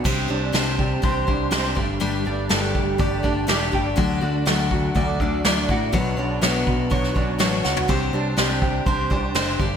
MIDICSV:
0, 0, Header, 1, 5, 480
1, 0, Start_track
1, 0, Tempo, 489796
1, 44, Time_signature, 4, 2, 24, 8
1, 9572, End_track
2, 0, Start_track
2, 0, Title_t, "Clean electric guitar"
2, 0, Program_c, 0, 27
2, 776, Note_on_c, 0, 67, 60
2, 1735, Note_off_c, 0, 67, 0
2, 1744, Note_on_c, 0, 55, 60
2, 1962, Note_off_c, 0, 55, 0
2, 2704, Note_on_c, 0, 67, 61
2, 3657, Note_off_c, 0, 67, 0
2, 4620, Note_on_c, 0, 66, 63
2, 5578, Note_off_c, 0, 66, 0
2, 6543, Note_on_c, 0, 66, 55
2, 7481, Note_off_c, 0, 66, 0
2, 8446, Note_on_c, 0, 67, 59
2, 9401, Note_off_c, 0, 67, 0
2, 9401, Note_on_c, 0, 55, 56
2, 9572, Note_off_c, 0, 55, 0
2, 9572, End_track
3, 0, Start_track
3, 0, Title_t, "Steel-string acoustic guitar"
3, 0, Program_c, 1, 25
3, 40, Note_on_c, 1, 48, 68
3, 48, Note_on_c, 1, 60, 67
3, 48, Note_on_c, 1, 62, 81
3, 53, Note_on_c, 1, 67, 75
3, 55, Note_on_c, 1, 72, 74
3, 263, Note_off_c, 1, 72, 0
3, 275, Note_on_c, 1, 72, 56
3, 276, Note_off_c, 1, 67, 0
3, 281, Note_off_c, 1, 62, 0
3, 283, Note_off_c, 1, 48, 0
3, 287, Note_off_c, 1, 60, 0
3, 288, Note_on_c, 1, 67, 46
3, 293, Note_on_c, 1, 62, 43
3, 512, Note_off_c, 1, 62, 0
3, 514, Note_on_c, 1, 48, 68
3, 518, Note_off_c, 1, 67, 0
3, 518, Note_off_c, 1, 72, 0
3, 521, Note_on_c, 1, 60, 70
3, 524, Note_on_c, 1, 62, 73
3, 530, Note_on_c, 1, 67, 83
3, 530, Note_on_c, 1, 72, 72
3, 987, Note_off_c, 1, 60, 0
3, 999, Note_on_c, 1, 60, 60
3, 1001, Note_off_c, 1, 72, 0
3, 1003, Note_off_c, 1, 48, 0
3, 1003, Note_off_c, 1, 62, 0
3, 1007, Note_off_c, 1, 67, 0
3, 1007, Note_on_c, 1, 62, 61
3, 1011, Note_on_c, 1, 67, 65
3, 1012, Note_on_c, 1, 72, 62
3, 1231, Note_off_c, 1, 72, 0
3, 1237, Note_off_c, 1, 67, 0
3, 1242, Note_on_c, 1, 72, 49
3, 1245, Note_off_c, 1, 60, 0
3, 1246, Note_off_c, 1, 62, 0
3, 1249, Note_on_c, 1, 67, 45
3, 1258, Note_on_c, 1, 62, 39
3, 1474, Note_off_c, 1, 62, 0
3, 1477, Note_off_c, 1, 67, 0
3, 1477, Note_off_c, 1, 72, 0
3, 1477, Note_on_c, 1, 48, 68
3, 1481, Note_on_c, 1, 60, 76
3, 1485, Note_on_c, 1, 62, 87
3, 1488, Note_on_c, 1, 72, 75
3, 1489, Note_on_c, 1, 67, 85
3, 1710, Note_off_c, 1, 67, 0
3, 1712, Note_off_c, 1, 72, 0
3, 1716, Note_on_c, 1, 74, 53
3, 1717, Note_off_c, 1, 62, 0
3, 1722, Note_on_c, 1, 67, 45
3, 1725, Note_off_c, 1, 48, 0
3, 1726, Note_off_c, 1, 60, 0
3, 1729, Note_on_c, 1, 62, 42
3, 1733, Note_on_c, 1, 57, 42
3, 1955, Note_off_c, 1, 62, 0
3, 1956, Note_off_c, 1, 57, 0
3, 1959, Note_off_c, 1, 67, 0
3, 1959, Note_on_c, 1, 43, 82
3, 1960, Note_off_c, 1, 74, 0
3, 1962, Note_on_c, 1, 55, 77
3, 1967, Note_on_c, 1, 57, 68
3, 1967, Note_on_c, 1, 62, 80
3, 1970, Note_on_c, 1, 67, 77
3, 1971, Note_on_c, 1, 74, 80
3, 2192, Note_off_c, 1, 74, 0
3, 2199, Note_off_c, 1, 67, 0
3, 2204, Note_on_c, 1, 74, 47
3, 2206, Note_off_c, 1, 43, 0
3, 2207, Note_off_c, 1, 62, 0
3, 2208, Note_off_c, 1, 55, 0
3, 2210, Note_off_c, 1, 57, 0
3, 2210, Note_on_c, 1, 67, 51
3, 2219, Note_on_c, 1, 62, 44
3, 2222, Note_on_c, 1, 57, 43
3, 2432, Note_off_c, 1, 57, 0
3, 2438, Note_off_c, 1, 62, 0
3, 2438, Note_off_c, 1, 67, 0
3, 2440, Note_off_c, 1, 74, 0
3, 2444, Note_on_c, 1, 43, 76
3, 2444, Note_on_c, 1, 57, 68
3, 2447, Note_on_c, 1, 55, 70
3, 2450, Note_on_c, 1, 62, 78
3, 2450, Note_on_c, 1, 67, 71
3, 2452, Note_on_c, 1, 74, 76
3, 2919, Note_off_c, 1, 57, 0
3, 2923, Note_off_c, 1, 67, 0
3, 2923, Note_on_c, 1, 57, 60
3, 2926, Note_off_c, 1, 62, 0
3, 2929, Note_off_c, 1, 43, 0
3, 2930, Note_on_c, 1, 62, 60
3, 2931, Note_off_c, 1, 55, 0
3, 2935, Note_on_c, 1, 67, 64
3, 2937, Note_off_c, 1, 74, 0
3, 2941, Note_on_c, 1, 74, 65
3, 3153, Note_off_c, 1, 74, 0
3, 3163, Note_off_c, 1, 67, 0
3, 3165, Note_off_c, 1, 62, 0
3, 3165, Note_on_c, 1, 74, 50
3, 3168, Note_off_c, 1, 57, 0
3, 3175, Note_on_c, 1, 67, 47
3, 3177, Note_on_c, 1, 62, 49
3, 3184, Note_on_c, 1, 57, 46
3, 3398, Note_off_c, 1, 57, 0
3, 3398, Note_off_c, 1, 62, 0
3, 3399, Note_on_c, 1, 43, 78
3, 3402, Note_off_c, 1, 74, 0
3, 3403, Note_off_c, 1, 67, 0
3, 3406, Note_on_c, 1, 55, 70
3, 3410, Note_on_c, 1, 57, 86
3, 3410, Note_on_c, 1, 62, 78
3, 3414, Note_on_c, 1, 74, 85
3, 3415, Note_on_c, 1, 67, 82
3, 3628, Note_off_c, 1, 74, 0
3, 3635, Note_off_c, 1, 67, 0
3, 3639, Note_on_c, 1, 74, 51
3, 3640, Note_off_c, 1, 62, 0
3, 3642, Note_off_c, 1, 57, 0
3, 3647, Note_off_c, 1, 43, 0
3, 3647, Note_on_c, 1, 67, 44
3, 3650, Note_off_c, 1, 55, 0
3, 3652, Note_on_c, 1, 62, 40
3, 3654, Note_on_c, 1, 57, 44
3, 3873, Note_off_c, 1, 57, 0
3, 3877, Note_off_c, 1, 62, 0
3, 3878, Note_on_c, 1, 50, 85
3, 3880, Note_off_c, 1, 74, 0
3, 3883, Note_on_c, 1, 54, 73
3, 3884, Note_on_c, 1, 57, 79
3, 3887, Note_off_c, 1, 67, 0
3, 3888, Note_on_c, 1, 62, 79
3, 3891, Note_on_c, 1, 66, 91
3, 3892, Note_on_c, 1, 74, 85
3, 4110, Note_off_c, 1, 74, 0
3, 4117, Note_off_c, 1, 66, 0
3, 4122, Note_on_c, 1, 74, 48
3, 4126, Note_off_c, 1, 50, 0
3, 4127, Note_off_c, 1, 62, 0
3, 4129, Note_off_c, 1, 54, 0
3, 4129, Note_off_c, 1, 57, 0
3, 4129, Note_on_c, 1, 66, 54
3, 4138, Note_on_c, 1, 62, 46
3, 4139, Note_on_c, 1, 57, 43
3, 4359, Note_off_c, 1, 57, 0
3, 4363, Note_off_c, 1, 62, 0
3, 4366, Note_on_c, 1, 50, 65
3, 4367, Note_off_c, 1, 66, 0
3, 4368, Note_off_c, 1, 74, 0
3, 4371, Note_on_c, 1, 57, 69
3, 4372, Note_on_c, 1, 54, 80
3, 4375, Note_on_c, 1, 62, 77
3, 4379, Note_on_c, 1, 66, 81
3, 4381, Note_on_c, 1, 74, 76
3, 4835, Note_off_c, 1, 57, 0
3, 4847, Note_on_c, 1, 57, 59
3, 4849, Note_off_c, 1, 50, 0
3, 4850, Note_off_c, 1, 62, 0
3, 4854, Note_off_c, 1, 66, 0
3, 4854, Note_on_c, 1, 62, 61
3, 4858, Note_on_c, 1, 66, 68
3, 4859, Note_off_c, 1, 74, 0
3, 4862, Note_on_c, 1, 74, 64
3, 5087, Note_off_c, 1, 74, 0
3, 5090, Note_off_c, 1, 57, 0
3, 5093, Note_off_c, 1, 66, 0
3, 5094, Note_off_c, 1, 62, 0
3, 5099, Note_on_c, 1, 74, 46
3, 5105, Note_on_c, 1, 66, 43
3, 5111, Note_on_c, 1, 62, 45
3, 5116, Note_on_c, 1, 57, 43
3, 5331, Note_off_c, 1, 57, 0
3, 5334, Note_off_c, 1, 66, 0
3, 5335, Note_off_c, 1, 54, 0
3, 5335, Note_off_c, 1, 62, 0
3, 5336, Note_off_c, 1, 74, 0
3, 5336, Note_on_c, 1, 50, 77
3, 5338, Note_on_c, 1, 54, 71
3, 5342, Note_on_c, 1, 57, 77
3, 5346, Note_on_c, 1, 66, 82
3, 5347, Note_on_c, 1, 62, 78
3, 5347, Note_on_c, 1, 74, 85
3, 5560, Note_off_c, 1, 74, 0
3, 5570, Note_off_c, 1, 66, 0
3, 5572, Note_on_c, 1, 74, 49
3, 5574, Note_off_c, 1, 50, 0
3, 5575, Note_off_c, 1, 54, 0
3, 5577, Note_off_c, 1, 57, 0
3, 5577, Note_off_c, 1, 62, 0
3, 5582, Note_on_c, 1, 66, 48
3, 5589, Note_on_c, 1, 62, 42
3, 5591, Note_on_c, 1, 57, 41
3, 5801, Note_off_c, 1, 62, 0
3, 5802, Note_off_c, 1, 66, 0
3, 5804, Note_off_c, 1, 57, 0
3, 5804, Note_on_c, 1, 47, 70
3, 5808, Note_on_c, 1, 54, 77
3, 5808, Note_on_c, 1, 59, 76
3, 5812, Note_off_c, 1, 74, 0
3, 5812, Note_on_c, 1, 62, 81
3, 5814, Note_on_c, 1, 66, 84
3, 5819, Note_on_c, 1, 73, 90
3, 6033, Note_off_c, 1, 73, 0
3, 6043, Note_off_c, 1, 66, 0
3, 6044, Note_on_c, 1, 73, 53
3, 6048, Note_off_c, 1, 47, 0
3, 6048, Note_off_c, 1, 62, 0
3, 6049, Note_off_c, 1, 54, 0
3, 6050, Note_off_c, 1, 59, 0
3, 6055, Note_on_c, 1, 66, 48
3, 6060, Note_on_c, 1, 62, 47
3, 6066, Note_on_c, 1, 59, 43
3, 6276, Note_off_c, 1, 59, 0
3, 6280, Note_off_c, 1, 62, 0
3, 6281, Note_off_c, 1, 66, 0
3, 6285, Note_off_c, 1, 73, 0
3, 6285, Note_on_c, 1, 47, 74
3, 6288, Note_on_c, 1, 54, 71
3, 6288, Note_on_c, 1, 59, 67
3, 6292, Note_on_c, 1, 62, 66
3, 6292, Note_on_c, 1, 66, 81
3, 6296, Note_on_c, 1, 73, 77
3, 6749, Note_off_c, 1, 59, 0
3, 6760, Note_on_c, 1, 59, 58
3, 6763, Note_off_c, 1, 66, 0
3, 6765, Note_off_c, 1, 62, 0
3, 6767, Note_off_c, 1, 47, 0
3, 6768, Note_off_c, 1, 54, 0
3, 6768, Note_on_c, 1, 62, 67
3, 6772, Note_off_c, 1, 73, 0
3, 6775, Note_on_c, 1, 66, 63
3, 6783, Note_on_c, 1, 73, 64
3, 6990, Note_off_c, 1, 73, 0
3, 7001, Note_off_c, 1, 66, 0
3, 7001, Note_on_c, 1, 73, 46
3, 7004, Note_off_c, 1, 59, 0
3, 7005, Note_off_c, 1, 62, 0
3, 7013, Note_on_c, 1, 66, 42
3, 7016, Note_on_c, 1, 62, 42
3, 7018, Note_on_c, 1, 59, 38
3, 7231, Note_off_c, 1, 59, 0
3, 7236, Note_off_c, 1, 66, 0
3, 7237, Note_on_c, 1, 47, 75
3, 7238, Note_off_c, 1, 62, 0
3, 7239, Note_off_c, 1, 73, 0
3, 7243, Note_on_c, 1, 54, 80
3, 7243, Note_on_c, 1, 59, 82
3, 7248, Note_on_c, 1, 66, 85
3, 7250, Note_on_c, 1, 62, 85
3, 7250, Note_on_c, 1, 73, 86
3, 7467, Note_off_c, 1, 73, 0
3, 7476, Note_off_c, 1, 66, 0
3, 7479, Note_on_c, 1, 73, 54
3, 7481, Note_off_c, 1, 62, 0
3, 7482, Note_off_c, 1, 47, 0
3, 7485, Note_off_c, 1, 54, 0
3, 7485, Note_off_c, 1, 59, 0
3, 7488, Note_on_c, 1, 66, 48
3, 7493, Note_on_c, 1, 62, 40
3, 7500, Note_on_c, 1, 59, 45
3, 7720, Note_off_c, 1, 62, 0
3, 7721, Note_on_c, 1, 48, 69
3, 7722, Note_off_c, 1, 73, 0
3, 7723, Note_off_c, 1, 59, 0
3, 7727, Note_off_c, 1, 66, 0
3, 7727, Note_on_c, 1, 60, 78
3, 7732, Note_on_c, 1, 62, 77
3, 7734, Note_on_c, 1, 67, 78
3, 7736, Note_on_c, 1, 72, 86
3, 7956, Note_off_c, 1, 72, 0
3, 7963, Note_off_c, 1, 48, 0
3, 7964, Note_off_c, 1, 67, 0
3, 7966, Note_off_c, 1, 60, 0
3, 7968, Note_off_c, 1, 62, 0
3, 7968, Note_on_c, 1, 72, 51
3, 7975, Note_on_c, 1, 67, 50
3, 7987, Note_on_c, 1, 62, 44
3, 8195, Note_off_c, 1, 62, 0
3, 8199, Note_off_c, 1, 67, 0
3, 8199, Note_on_c, 1, 48, 65
3, 8203, Note_off_c, 1, 72, 0
3, 8204, Note_on_c, 1, 60, 71
3, 8207, Note_on_c, 1, 62, 70
3, 8211, Note_on_c, 1, 67, 72
3, 8215, Note_on_c, 1, 72, 72
3, 8670, Note_off_c, 1, 60, 0
3, 8680, Note_off_c, 1, 48, 0
3, 8682, Note_on_c, 1, 60, 52
3, 8686, Note_off_c, 1, 62, 0
3, 8688, Note_off_c, 1, 72, 0
3, 8690, Note_on_c, 1, 62, 60
3, 8694, Note_off_c, 1, 67, 0
3, 8698, Note_on_c, 1, 67, 65
3, 8701, Note_on_c, 1, 72, 67
3, 8905, Note_off_c, 1, 72, 0
3, 8916, Note_off_c, 1, 67, 0
3, 8917, Note_on_c, 1, 72, 55
3, 8922, Note_off_c, 1, 60, 0
3, 8923, Note_off_c, 1, 62, 0
3, 8928, Note_on_c, 1, 67, 44
3, 8935, Note_on_c, 1, 62, 39
3, 9156, Note_off_c, 1, 62, 0
3, 9159, Note_off_c, 1, 72, 0
3, 9159, Note_on_c, 1, 48, 81
3, 9161, Note_off_c, 1, 67, 0
3, 9164, Note_on_c, 1, 60, 71
3, 9168, Note_on_c, 1, 62, 75
3, 9173, Note_on_c, 1, 67, 72
3, 9174, Note_on_c, 1, 72, 89
3, 9398, Note_off_c, 1, 72, 0
3, 9399, Note_off_c, 1, 48, 0
3, 9401, Note_off_c, 1, 67, 0
3, 9402, Note_off_c, 1, 60, 0
3, 9402, Note_on_c, 1, 74, 52
3, 9404, Note_off_c, 1, 62, 0
3, 9412, Note_on_c, 1, 67, 52
3, 9416, Note_on_c, 1, 62, 46
3, 9421, Note_on_c, 1, 57, 41
3, 9572, Note_off_c, 1, 57, 0
3, 9572, Note_off_c, 1, 62, 0
3, 9572, Note_off_c, 1, 67, 0
3, 9572, Note_off_c, 1, 74, 0
3, 9572, End_track
4, 0, Start_track
4, 0, Title_t, "Picked electric bass"
4, 0, Program_c, 2, 34
4, 53, Note_on_c, 2, 36, 79
4, 259, Note_off_c, 2, 36, 0
4, 296, Note_on_c, 2, 36, 72
4, 501, Note_off_c, 2, 36, 0
4, 529, Note_on_c, 2, 36, 71
4, 948, Note_off_c, 2, 36, 0
4, 1015, Note_on_c, 2, 36, 78
4, 1222, Note_off_c, 2, 36, 0
4, 1254, Note_on_c, 2, 36, 78
4, 1462, Note_off_c, 2, 36, 0
4, 1493, Note_on_c, 2, 36, 76
4, 1702, Note_off_c, 2, 36, 0
4, 1734, Note_on_c, 2, 31, 77
4, 1943, Note_off_c, 2, 31, 0
4, 1977, Note_on_c, 2, 31, 88
4, 2185, Note_off_c, 2, 31, 0
4, 2215, Note_on_c, 2, 31, 74
4, 2424, Note_off_c, 2, 31, 0
4, 2460, Note_on_c, 2, 31, 78
4, 2666, Note_off_c, 2, 31, 0
4, 2696, Note_on_c, 2, 31, 73
4, 2905, Note_off_c, 2, 31, 0
4, 2933, Note_on_c, 2, 31, 85
4, 3143, Note_off_c, 2, 31, 0
4, 3179, Note_on_c, 2, 31, 73
4, 3386, Note_off_c, 2, 31, 0
4, 3416, Note_on_c, 2, 28, 85
4, 3624, Note_off_c, 2, 28, 0
4, 3660, Note_on_c, 2, 31, 79
4, 3866, Note_off_c, 2, 31, 0
4, 3902, Note_on_c, 2, 38, 83
4, 4108, Note_off_c, 2, 38, 0
4, 4137, Note_on_c, 2, 38, 80
4, 4345, Note_off_c, 2, 38, 0
4, 4379, Note_on_c, 2, 38, 77
4, 4795, Note_off_c, 2, 38, 0
4, 4862, Note_on_c, 2, 38, 83
4, 5067, Note_off_c, 2, 38, 0
4, 5098, Note_on_c, 2, 38, 75
4, 5305, Note_off_c, 2, 38, 0
4, 5339, Note_on_c, 2, 38, 82
4, 5545, Note_off_c, 2, 38, 0
4, 5578, Note_on_c, 2, 45, 82
4, 5822, Note_on_c, 2, 35, 88
4, 5837, Note_off_c, 2, 45, 0
4, 6026, Note_off_c, 2, 35, 0
4, 6045, Note_on_c, 2, 35, 78
4, 6256, Note_off_c, 2, 35, 0
4, 6286, Note_on_c, 2, 35, 71
4, 6497, Note_off_c, 2, 35, 0
4, 6540, Note_on_c, 2, 35, 78
4, 6744, Note_off_c, 2, 35, 0
4, 6779, Note_on_c, 2, 35, 80
4, 6983, Note_off_c, 2, 35, 0
4, 7014, Note_on_c, 2, 35, 79
4, 7220, Note_off_c, 2, 35, 0
4, 7256, Note_on_c, 2, 33, 78
4, 7461, Note_off_c, 2, 33, 0
4, 7498, Note_on_c, 2, 37, 74
4, 7702, Note_off_c, 2, 37, 0
4, 7736, Note_on_c, 2, 36, 87
4, 7940, Note_off_c, 2, 36, 0
4, 7967, Note_on_c, 2, 36, 81
4, 8175, Note_off_c, 2, 36, 0
4, 8207, Note_on_c, 2, 36, 72
4, 8623, Note_off_c, 2, 36, 0
4, 8688, Note_on_c, 2, 36, 80
4, 8894, Note_off_c, 2, 36, 0
4, 8925, Note_on_c, 2, 36, 78
4, 9132, Note_off_c, 2, 36, 0
4, 9162, Note_on_c, 2, 30, 86
4, 9370, Note_off_c, 2, 30, 0
4, 9402, Note_on_c, 2, 31, 78
4, 9572, Note_off_c, 2, 31, 0
4, 9572, End_track
5, 0, Start_track
5, 0, Title_t, "Drums"
5, 50, Note_on_c, 9, 36, 101
5, 53, Note_on_c, 9, 49, 82
5, 148, Note_off_c, 9, 36, 0
5, 151, Note_off_c, 9, 49, 0
5, 533, Note_on_c, 9, 38, 102
5, 631, Note_off_c, 9, 38, 0
5, 774, Note_on_c, 9, 36, 72
5, 872, Note_off_c, 9, 36, 0
5, 1015, Note_on_c, 9, 36, 98
5, 1015, Note_on_c, 9, 46, 42
5, 1113, Note_off_c, 9, 36, 0
5, 1113, Note_off_c, 9, 46, 0
5, 1254, Note_on_c, 9, 36, 73
5, 1352, Note_off_c, 9, 36, 0
5, 1491, Note_on_c, 9, 38, 105
5, 1589, Note_off_c, 9, 38, 0
5, 1733, Note_on_c, 9, 36, 79
5, 1831, Note_off_c, 9, 36, 0
5, 1974, Note_on_c, 9, 46, 46
5, 2072, Note_off_c, 9, 46, 0
5, 2452, Note_on_c, 9, 46, 42
5, 2454, Note_on_c, 9, 38, 91
5, 2550, Note_off_c, 9, 46, 0
5, 2552, Note_off_c, 9, 38, 0
5, 2695, Note_on_c, 9, 36, 81
5, 2793, Note_off_c, 9, 36, 0
5, 2931, Note_on_c, 9, 46, 43
5, 2935, Note_on_c, 9, 36, 96
5, 3029, Note_off_c, 9, 46, 0
5, 3033, Note_off_c, 9, 36, 0
5, 3176, Note_on_c, 9, 36, 69
5, 3274, Note_off_c, 9, 36, 0
5, 3420, Note_on_c, 9, 38, 95
5, 3518, Note_off_c, 9, 38, 0
5, 3658, Note_on_c, 9, 36, 63
5, 3756, Note_off_c, 9, 36, 0
5, 3900, Note_on_c, 9, 36, 99
5, 3902, Note_on_c, 9, 46, 46
5, 3998, Note_off_c, 9, 36, 0
5, 4000, Note_off_c, 9, 46, 0
5, 4380, Note_on_c, 9, 38, 97
5, 4478, Note_off_c, 9, 38, 0
5, 4617, Note_on_c, 9, 36, 73
5, 4715, Note_off_c, 9, 36, 0
5, 4856, Note_on_c, 9, 46, 43
5, 4857, Note_on_c, 9, 36, 93
5, 4954, Note_off_c, 9, 46, 0
5, 4955, Note_off_c, 9, 36, 0
5, 5096, Note_on_c, 9, 36, 73
5, 5194, Note_off_c, 9, 36, 0
5, 5336, Note_on_c, 9, 46, 50
5, 5338, Note_on_c, 9, 38, 95
5, 5434, Note_off_c, 9, 46, 0
5, 5436, Note_off_c, 9, 38, 0
5, 5576, Note_on_c, 9, 36, 70
5, 5674, Note_off_c, 9, 36, 0
5, 5815, Note_on_c, 9, 46, 50
5, 5817, Note_on_c, 9, 36, 93
5, 5913, Note_off_c, 9, 46, 0
5, 5915, Note_off_c, 9, 36, 0
5, 6299, Note_on_c, 9, 38, 92
5, 6397, Note_off_c, 9, 38, 0
5, 6537, Note_on_c, 9, 36, 75
5, 6635, Note_off_c, 9, 36, 0
5, 6774, Note_on_c, 9, 46, 45
5, 6776, Note_on_c, 9, 36, 88
5, 6872, Note_off_c, 9, 46, 0
5, 6874, Note_off_c, 9, 36, 0
5, 6901, Note_on_c, 9, 38, 29
5, 6999, Note_off_c, 9, 38, 0
5, 7015, Note_on_c, 9, 36, 66
5, 7113, Note_off_c, 9, 36, 0
5, 7249, Note_on_c, 9, 46, 43
5, 7251, Note_on_c, 9, 38, 95
5, 7347, Note_off_c, 9, 46, 0
5, 7349, Note_off_c, 9, 38, 0
5, 7490, Note_on_c, 9, 38, 44
5, 7588, Note_off_c, 9, 38, 0
5, 7610, Note_on_c, 9, 43, 76
5, 7708, Note_off_c, 9, 43, 0
5, 7729, Note_on_c, 9, 46, 45
5, 7733, Note_on_c, 9, 36, 105
5, 7827, Note_off_c, 9, 46, 0
5, 7831, Note_off_c, 9, 36, 0
5, 8206, Note_on_c, 9, 46, 42
5, 8208, Note_on_c, 9, 38, 89
5, 8304, Note_off_c, 9, 46, 0
5, 8306, Note_off_c, 9, 38, 0
5, 8448, Note_on_c, 9, 36, 74
5, 8546, Note_off_c, 9, 36, 0
5, 8686, Note_on_c, 9, 46, 43
5, 8688, Note_on_c, 9, 36, 97
5, 8784, Note_off_c, 9, 46, 0
5, 8786, Note_off_c, 9, 36, 0
5, 8927, Note_on_c, 9, 36, 68
5, 9025, Note_off_c, 9, 36, 0
5, 9165, Note_on_c, 9, 46, 50
5, 9167, Note_on_c, 9, 38, 100
5, 9263, Note_off_c, 9, 46, 0
5, 9265, Note_off_c, 9, 38, 0
5, 9404, Note_on_c, 9, 36, 88
5, 9502, Note_off_c, 9, 36, 0
5, 9572, End_track
0, 0, End_of_file